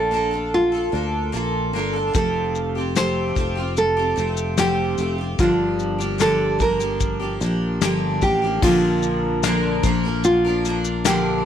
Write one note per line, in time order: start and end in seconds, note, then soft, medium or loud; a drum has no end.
0.00 0.89 A#1 medium
0.00 0.11 D4 medium
0.00 0.12 F4 medium
0.00 0.13 A4 medium
0.00 0.49 A4 medium
0.11 0.32 A#3 medium
0.11 0.32 D4 medium
0.11 0.32 F4 medium
0.11 0.30 A4 medium
0.31 0.74 D4 soft
0.31 0.72 F4 soft
0.31 0.71 A4 medium
0.54 1.71 F4 medium
0.72 0.92 D4 soft
0.72 0.93 F4 soft
0.72 0.93 A4 soft
0.92 1.30 D2 medium
0.92 1.31 A#3 medium
0.92 1.32 D4 soft
0.92 1.33 F4 medium
0.92 1.33 A4 medium
1.32 1.74 A#1 medium
1.32 1.72 A#3 medium
1.32 1.74 D4 medium
1.32 1.74 F4 medium
1.32 1.75 A4 medium
1.73 2.12 G1 medium
1.73 1.94 A#3 medium
1.73 1.95 D4 medium
1.73 1.94 F4 medium
1.73 1.92 A4 medium
1.93 2.14 D4 soft
1.93 2.14 F4 soft
1.93 2.14 A4 soft
2.14 3.32 F1 medium
2.14 2.75 F3 medium
2.14 2.75 A3 medium
2.14 2.76 C4 medium
2.14 2.76 F4 medium
2.14 2.74 G4 medium
2.14 2.96 A4 medium
2.14 kick medium
2.14 shaker medium
2.55 shaker soft
2.75 2.95 C4 soft
2.75 2.96 F4 soft
2.75 2.96 G4 soft
2.95 3.36 F3 medium
2.95 3.34 A3 medium
2.95 3.35 C4 medium
2.95 3.36 F4 medium
2.95 3.37 G4 medium
2.95 3.73 C5 medium
2.95 snare medium
2.95 shaker medium
3.35 4.13 F1 medium
3.35 3.56 A3 medium
3.35 3.57 C4 medium
3.35 3.56 F4 medium
3.35 3.54 G4 medium
3.35 kick medium
3.35 shaker soft
3.55 3.98 C4 soft
3.55 3.97 F4 soft
3.55 3.95 G4 soft
3.77 4.58 A4 loud
3.77 shaker soft
3.97 4.16 C4 soft
3.97 4.17 F4 soft
3.97 4.17 G4 medium
4.16 4.95 F1 medium
4.16 4.57 A3 medium
4.16 4.57 C4 medium
4.16 4.57 F4 medium
4.16 4.58 G4 soft
4.16 shaker soft
4.37 shaker soft
4.57 4.98 F3 medium
4.57 4.96 A3 medium
4.57 4.98 C4 medium
4.57 4.98 F4 medium
4.57 5.15 G4 medium
4.57 4.99 G4 medium
4.57 snare loud
4.57 shaker medium
4.97 5.36 F1 medium
4.97 5.18 A3 soft
4.97 5.19 C4 medium
4.97 5.19 F4 medium
4.97 5.17 G4 medium
4.97 shaker soft
5.18 5.40 C4 soft
5.18 5.40 F4 soft
5.18 5.39 G4 soft
5.39 7.37 G1 medium
5.39 6.00 G2 medium
5.39 6.00 D3 medium
5.39 6.00 F3 medium
5.39 5.99 A#3 medium
5.39 5.99 D4 medium
5.39 6.17 F4 medium
5.39 5.97 G4 medium
5.39 kick loud
5.39 shaker medium
5.79 shaker soft
5.98 6.18 F3 soft
5.98 6.19 A#3 soft
5.98 6.19 D4 soft
5.98 6.19 G4 soft
5.98 shaker soft
6.18 6.60 G2 medium
6.18 6.60 D3 medium
6.18 6.57 F3 medium
6.18 6.58 A#3 medium
6.18 6.60 D4 medium
6.18 6.60 G4 medium
6.18 6.61 A4 medium
6.18 snare medium
6.18 shaker medium
6.59 6.80 F3 medium
6.59 6.80 A#3 medium
6.59 6.79 D4 medium
6.59 6.78 G4 medium
6.59 8.19 A#4 medium
6.59 kick medium
6.59 shaker soft
6.79 7.21 F3 soft
6.79 7.20 A#3 soft
6.79 7.19 D4 soft
6.79 7.18 G4 medium
6.79 shaker soft
7.00 kick medium
7.00 shaker medium
7.20 7.39 F3 soft
7.20 7.40 A#3 soft
7.20 7.41 D4 soft
7.20 7.41 G4 soft
7.40 7.79 A#1 medium
7.40 7.81 F3 soft
7.40 7.81 A#3 medium
7.40 7.81 D4 soft
7.40 7.82 G4 medium
7.40 shaker soft
7.81 8.19 G1 medium
7.81 8.22 G2 medium
7.81 8.22 D3 medium
7.81 8.21 F3 medium
7.81 8.21 A#3 medium
7.81 8.23 D4 medium
7.81 8.23 G4 medium
7.81 snare loud
7.81 shaker medium
8.22 8.59 A1 medium
8.22 8.42 F3 medium
8.22 8.43 A#3 medium
8.22 8.42 D4 medium
8.22 8.63 G4 medium
8.22 8.41 G4 medium
8.22 kick medium
8.22 shaker soft
8.42 8.62 F3 soft
8.42 8.63 A#3 soft
8.42 8.63 D4 soft
8.42 8.63 G4 soft
8.62 9.80 A#1 loud
8.62 9.42 A#2 medium
8.62 9.42 D3 medium
8.62 9.43 F3 medium
8.62 9.44 A#3 medium
8.62 9.44 D4 medium
8.62 10.23 F4 medium
8.62 9.45 A#4 medium
8.62 kick loud
8.62 crash loud
9.03 shaker soft
9.43 9.84 A#2 medium
9.43 9.84 D3 medium
9.43 9.82 F3 medium
9.43 9.83 A#3 medium
9.43 9.84 D4 medium
9.43 9.85 A#4 medium
9.43 snare loud
9.43 shaker medium
9.83 11.41 A#1 medium
9.83 10.04 F3 medium
9.83 10.04 A#3 medium
9.83 10.04 D4 medium
9.83 10.02 A#4 medium
9.83 kick medium
9.83 shaker soft
10.04 10.46 F3 soft
10.04 10.45 A#3 soft
10.04 10.45 D4 medium
10.04 10.43 A#4 medium
10.24 11.06 F4 medium
10.24 shaker medium
10.45 10.63 F3 soft
10.45 10.65 A#3 medium
10.45 10.65 D4 soft
10.45 10.65 A#4 medium
10.65 11.05 F3 soft
10.65 11.05 A#3 medium
10.65 11.05 D4 medium
10.65 11.06 A#4 medium
10.65 shaker soft
10.84 shaker medium
11.04 11.45 A#2 medium
11.04 11.45 D3 medium
11.04 11.44 F3 medium
11.04 11.45 A#3 medium
11.04 11.45 D4 medium
11.04 11.43 G4 medium
11.04 11.45 A#4 medium
11.04 snare loud
11.04 shaker medium